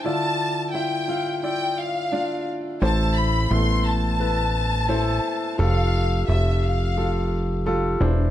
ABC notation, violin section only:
X:1
M:4/4
L:1/8
Q:1/4=87
K:Am
V:1 name="Violin section"
a2 g2 g f2 z | a b c' a4- a | f2 e f2 z3 |]